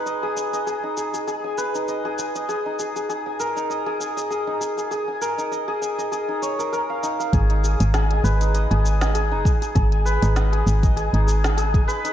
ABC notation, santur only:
X:1
M:4/4
L:1/16
Q:"Swing 16ths" 1/4=99
K:G#dor
V:1 name="Santur"
d G g d G D G G G g B D d G g d | G D G G G g A D d G g d G D G G | G g A D d G g d G D c A A e D e | G D G G G g B D d G g d G D G G |
G g B D d G g d G D G G G g B D |]